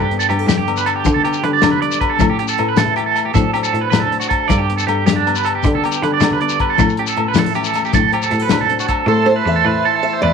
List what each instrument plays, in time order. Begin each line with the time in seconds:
Already playing: cello G2, steel-string acoustic guitar G2 D4 A4
0.00 clean electric guitar G4, low conga
0.11 steel-string acoustic guitar B3, closed hi-hat
0.19 clean electric guitar A4, shekere
0.29 cello G2, steel-string acoustic guitar G3 G4, clean electric guitar G4, closed hi-hat, low agogo
0.39 steel-string acoustic guitar A4
0.47 cello G2, steel-string acoustic guitar D4, clean electric guitar G4, snare, closed hi-hat, high conga, shekere
0.58 clean electric guitar G4, low conga
0.67 steel-string acoustic guitar D3 B3, closed hi-hat, low agogo
0.77 clean electric guitar B4, shekere
0.86 clean electric guitar A4, closed hi-hat, low agogo, shekere
0.96 clean electric guitar G4, low conga
1.05 steel-string acoustic guitar G2 A4, cello D3, kick, closed hi-hat, high conga, shekere
1.14 clean electric guitar A4, low conga
1.24 steel-string acoustic guitar B3, clean electric guitar G4, closed hi-hat, low agogo
1.33 shekere
1.43 cello D3, steel-string acoustic guitar G3 A4, clean electric guitar B4, closed hi-hat
1.53 clean electric guitar D5
1.62 cello D3, snare, closed hi-hat, high conga, low agogo, shekere
1.71 clean electric guitar B4, low conga
1.82 clean electric guitar D5, closed hi-hat
1.92 low conga, shekere
2.01 steel-string acoustic guitar G2, clean electric guitar B4, kick, closed hi-hat, low agogo
2.10 clean electric guitar A4
2.19 steel-string acoustic guitar A2 A4, cello A2, kick, closed hi-hat, high conga, low conga, low agogo, shekere
2.29 clean electric guitar G4, low conga
2.39 steel-string acoustic guitar C#4, clean electric guitar G4, closed hi-hat
2.48 clean electric guitar A4, shekere
2.58 cello A2, steel-string acoustic guitar A3 B4, closed hi-hat, low agogo
2.68 clean electric guitar B4
2.77 cello A2, steel-string acoustic guitar E4, clean electric guitar A4, snare, closed hi-hat, high conga, shekere
2.86 low conga
2.96 steel-string acoustic guitar E3, clean electric guitar G4, muted steel-string acoustic guitar stroke, closed hi-hat, low agogo
3.06 clean electric guitar A4
3.16 closed hi-hat, low agogo, shekere
3.25 clean electric guitar G4, low conga
3.33 steel-string acoustic guitar A2 F#3 C4 D4 A4, cello A2, clean electric guitar A4, kick, closed hi-hat, high conga, shekere
3.44 low conga
3.53 steel-string acoustic guitar C4, clean electric guitar G4, closed hi-hat, low agogo
3.63 clean electric guitar A4, shekere
3.73 cello A2, steel-string acoustic guitar F#3 A4, closed hi-hat
3.81 clean electric guitar B4
3.90 cello A2, steel-string acoustic guitar D4, clean electric guitar B4, snare, closed hi-hat, high conga, low agogo, shekere
4.00 clean electric guitar A4, low conga
4.11 steel-string acoustic guitar A2 C4, closed hi-hat
4.20 clean electric guitar F#4, low conga, shekere
4.29 clean electric guitar A4, kick, closed hi-hat, low agogo
4.48 cello G2, steel-string acoustic guitar A4, clean electric guitar D5, muted steel-string acoustic guitar stroke, kick, closed hi-hat, high conga, low conga, low agogo, shekere
4.58 clean electric guitar G4, low conga
4.70 steel-string acoustic guitar B3, closed hi-hat
4.77 clean electric guitar A4, shekere
4.87 cello G2, steel-string acoustic guitar G3 A4, clean electric guitar G4, closed hi-hat, low agogo
5.06 cello G2, steel-string acoustic guitar D4, clean electric guitar G4, snare, closed hi-hat, high conga, shekere
5.16 clean electric guitar D4, low conga
5.26 steel-string acoustic guitar D3 B3, closed hi-hat, low agogo
5.35 clean electric guitar B4, shekere
5.45 clean electric guitar A4, closed hi-hat, low agogo
5.55 clean electric guitar G4, low conga
5.63 steel-string acoustic guitar G2 A4, cello D3, kick, closed hi-hat, high conga, shekere
5.74 clean electric guitar A4, low conga
5.84 steel-string acoustic guitar B3, clean electric guitar G4, closed hi-hat, low agogo
5.92 shekere
6.02 cello D3, steel-string acoustic guitar G3 A4, clean electric guitar B4, closed hi-hat
6.14 clean electric guitar D5
6.20 cello D3, steel-string acoustic guitar D4, snare, closed hi-hat, high conga, low agogo, shekere
6.31 clean electric guitar B4, low conga
6.40 steel-string acoustic guitar D3 B3, clean electric guitar D5, closed hi-hat
6.49 low conga, shekere
6.60 clean electric guitar B4, kick, closed hi-hat, low agogo
6.70 clean electric guitar A4
6.78 steel-string acoustic guitar A2 A4, cello A2, kick, closed hi-hat, high conga, low agogo, shekere
6.89 shekere
6.97 steel-string acoustic guitar C#4, clean electric guitar G4, closed hi-hat
7.07 clean electric guitar A4, shekere
7.16 cello A2, steel-string acoustic guitar A3 B4, closed hi-hat, low agogo
7.28 clean electric guitar B4, low conga
7.34 cello A2, steel-string acoustic guitar D4, snare, closed hi-hat, high conga, shekere
7.38 clean electric guitar A4
7.46 steel-string acoustic guitar E4, low conga
7.54 steel-string acoustic guitar E3 C#4, clean electric guitar G4, closed hi-hat, low conga, low agogo, shekere
7.64 clean electric guitar A4, low conga, shekere
7.74 snare, closed hi-hat, low conga, low agogo, shekere
7.85 clean electric guitar G4, shekere
7.92 steel-string acoustic guitar A2 A4, cello A2, clean electric guitar A4, kick, closed hi-hat, high conga, shekere
8.03 low conga
8.12 steel-string acoustic guitar C4, clean electric guitar G4, closed hi-hat, low agogo
8.22 clean electric guitar A4, low conga, shekere
8.30 cello A2, steel-string acoustic guitar F#3 G4, closed hi-hat, low conga, shekere
8.39 steel-string acoustic guitar A4, clean electric guitar B4, low conga
8.49 cello A2, steel-string acoustic guitar D4, clean electric guitar B4, snare, closed hi-hat, high conga, low agogo, shekere
8.61 clean electric guitar A4, low conga
8.69 steel-string acoustic guitar A2 C4, closed hi-hat
8.79 clean electric guitar F#4, low conga, shekere
8.88 clean electric guitar A4, kick, closed hi-hat, low conga, low agogo, shekere
9.06 steel-string acoustic guitar A2 A3 C4 E4 A4, cello A2, clean electric guitar A4, transistor combo organ E5 A5 C6
9.26 steel-string acoustic guitar E4 C5, muted clean electric guitar stroke
9.36 clean electric guitar B4
9.46 cello E2, steel-string acoustic guitar A3 C4 E5
9.56 clean electric guitar A4
9.65 cello A2, steel-string acoustic guitar E4, clean electric guitar B4
9.85 steel-string acoustic guitar E3, clean electric guitar A4
9.96 clean electric guitar A4
10.03 steel-string acoustic guitar E4 E5
10.13 clean electric guitar C5
10.22 cello E2, steel-string acoustic guitar A2 D5, clean electric guitar B4